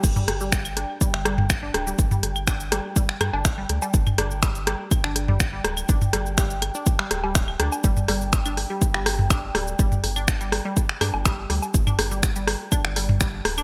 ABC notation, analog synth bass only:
X:1
M:4/4
L:1/16
Q:1/4=123
K:Cdor
V:1 name="Analog synth bass" clef=bass
G,,,2 G,,,4- G,,, z2 G,,,4- G,,, D,,,2 | G,,,2 G,,,4- G,,, z3 G,, G,,,3 D,, z | G,,,2 G,,,4- G,,, z2 G,,,4- G,,, D,,,2 | G,,,2 G,,,4- G,,, z3 D,,,4 D,, z |
G,,,2 G,,,4- G,,, z2 G,,,4- G,,, D,,,2 | G,,,2 G,,,4- G,,, z3 G,, G,,,3 D,, z | G,,,2 G,,,4- G,,, z2 G,,,4- G,,, D,,,2 |]